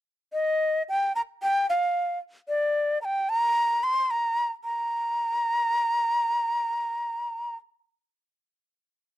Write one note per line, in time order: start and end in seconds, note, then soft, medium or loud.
0.33 0.83 D#5 medium
0.89 1.13 G5 medium
1.15 1.21 A#5 medium
1.43 1.67 G5 medium
1.70 2.19 F5 medium
2.48 2.99 D5 medium
3.02 3.31 G5 medium
3.02 3.06 A#5 medium
3.29 3.85 A#5 medium
3.83 4.12 C6 medium
4.11 4.51 A#5 medium
4.64 7.56 A#5 medium